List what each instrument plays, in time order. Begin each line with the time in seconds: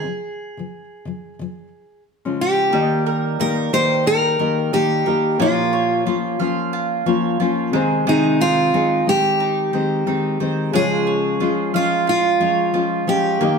Already playing: steel-string acoustic guitar G#4
0.05 nylon-string guitar C#3 F3
0.57 nylon-string guitar C#3 F3
1.05 nylon-string guitar C#3 F3
1.39 nylon-string guitar C#3 F3
2.25 nylon-string guitar C#3 F3 G#3 C#4
2.41 steel-string acoustic guitar G4
2.70 nylon-string guitar D#3 A#3 D#4, mandolin G3, upright piano A#3 D#4 G4 D5
2.74 nylon-string guitar G4
2.81 upright piano D#5
3.06 mandolin A#4
3.39 nylon-string guitar D#3 A#3 D#4 G4, mandolin D#4, steel-string acoustic guitar A#4
3.73 nylon-string guitar D#3 A#3 D#4 G4, steel-string acoustic guitar C5, mandolin G5
4.06 mandolin D#4, steel-string acoustic guitar A#4
4.39 nylon-string guitar D#3 A#3 D#4 G4, mandolin A#4
4.73 nylon-string guitar D#3 A#3 D#4 G4, mandolin D#4, steel-string acoustic guitar G4
5.06 nylon-string guitar D#3 A#3 D#4 G4, mandolin A#4
5.38 nylon-string guitar A#2 F3 A#3 C#4 F4, upright piano A#3 C#4 F4 C#5, mandolin A#3, steel-string acoustic guitar F4
5.73 mandolin C#5
6.05 nylon-string guitar F3 A#3 C#4 F4, mandolin F4
6.39 nylon-string guitar F3 A#3 C#4 F4, mandolin F5
6.73 mandolin F4
7.06 nylon-string guitar F3 A#3 C#4 F4, mandolin C#5
7.40 nylon-string guitar F3 A#3 C#4 F4, mandolin F4
7.71 upright piano C3 G#3 C4 D#4, nylon-string guitar D#3 G#3 C4 G#4, mandolin G#3
7.75 upright piano C5
8.07 nylon-string guitar C3 D#3 G#3 C4 G#4, mandolin G#3, steel-string acoustic guitar D#4
8.41 steel-string acoustic guitar F4, mandolin C5
8.73 nylon-string guitar D#3 G#3 C4 G#4, mandolin D#4
9.06 nylon-string guitar D#3 G#3 C4, steel-string acoustic guitar G4
9.40 mandolin D#4
9.73 nylon-string guitar D#3 G#3 C4, mandolin C5
10.06 nylon-string guitar D#3 G#3 C4, mandolin D#4
10.40 nylon-string guitar D#3 G#3 C4, mandolin C5
10.71 nylon-string guitar C#3 F3 G#3 C#4 F4, upright piano G#3 C#4 F4 C#5, mandolin G#3, steel-string acoustic guitar G#4
11.07 mandolin C#5
11.40 nylon-string guitar F3 G#3 C#4 F4, mandolin F4
11.74 nylon-string guitar F3 G#3 C#4 F4, steel-string acoustic guitar F4, mandolin F5
12.07 mandolin F4, steel-string acoustic guitar F4
12.40 nylon-string guitar F3 G#3 C#4 F4, mandolin C#5
12.74 nylon-string guitar F3 G#3 C#4 F4, mandolin F4
13.07 nylon-string guitar F3 G#3 C#4 F4, steel-string acoustic guitar G4, mandolin C#5
13.39 nylon-string guitar D#3 A#3 D#4 G4, upright piano A#3 D#4 F4, mandolin A#3
13.43 upright piano D#5
13.48 upright piano G4